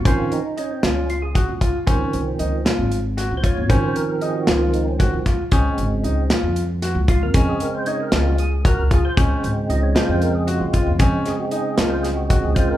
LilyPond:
<<
  \new Staff \with { instrumentName = "Grand piano" } { \time 7/8 \key ges \lydian \tempo 4 = 115 des'4 ees'8 f'4 ges'8 f'8 | des'4 ees'8 f'4 ges'8 f'8 | des'4 ees'8 f'4 ges'8 f'8 | des'4 ees'8 f'4 ges'8 f'8 |
des'4 ees'8 f'4 ges'8 f'8 | des'4 ees'8 f'4 ges'8 f'8 | des'4 ees'8 f'4 ges'8 f'8 | }
  \new Staff \with { instrumentName = "Tonewheel organ" } { \time 7/8 \key ges \lydian f'8 ees'8 des'16 c'16 des'8 f'16 aes'8 r8. | r2 r8. r32 c''32 des''8 | c''8 bes'8 aes'16 ges'16 f'8 ees'16 des'8 r8. | r2. f'16 bes'16~ |
bes'16 aes'16 bes'16 c''16 des''16 bes'8 ges'16 aes'8 bes'8 aes'16 c''16~ | c''8. r16 ees''16 des''16 c''8 bes'16 aes'16 f'4 | r8 aes'16 ges'16 aes'8 bes'16 c''16 aes'16 ges'8 aes'16 c''16 bes'16 | }
  \new Staff \with { instrumentName = "Tonewheel organ" } { \clef bass \time 7/8 \key ges \lydian <ees f c'>8 r2. | <ees f c'>4. r2 | <ees f c'>2~ <ees f c'>8 <ees f c'>8 r8 | <des aes c'>4. r2 |
<des aes c'>4. <des aes c'>8 r4. | <des aes c'>2.~ <des aes c'>8 | <des aes c'>2.~ <des aes c'>8 | }
  \new Staff \with { instrumentName = "Upright bass" } { \clef bass \time 7/8 \key ges \lydian aes,,16 r4 r16 des,4~ des,16 des,8 r16 | des,16 r16 c,8 des,8 r16 aes,,4 des,8 aes,,16~ | aes,,16 r4 r16 des,4~ des,16 des,8 r16 | des,16 r16 aes,,8 des,8 r16 f,4 des,8 f,16~ |
f,16 r4 r16 des,4~ des,16 des,8 r16 | des,16 r16 aes,,8 des,8 r16 f,4 des,8 f,16~ | f,16 r4 r16 des,4~ des,16 des,8 r16 | }
  \new DrumStaff \with { instrumentName = "Drums" } \drummode { \time 7/8 <hh bd>8 hh8 hh8 <hh sn>8 hh8 <hh bd>8 <hh bd>8 | <hh bd>8 hh8 hh8 <hh sn>8 hh8 <hh sn>8 <hh bd>8 | <hh bd>8 hh8 hh8 <hh sn>8 hh8 <hh bd sn>8 <hh bd sn>8 | <hh bd>8 hh8 hh8 <hh sn>8 hh8 <hh sn>8 <hh bd>8 |
<hh bd>8 hh8 hh8 <hh sn>8 hh8 <hh bd>8 <hh bd>8 | <hh bd>8 hh8 hh8 <hh sn>8 hh8 hh8 <hh bd>8 | <hh bd>8 <hh sn>8 hh8 <hh sn>8 <hh sn>8 <hh bd>8 <hh bd>8 | }
>>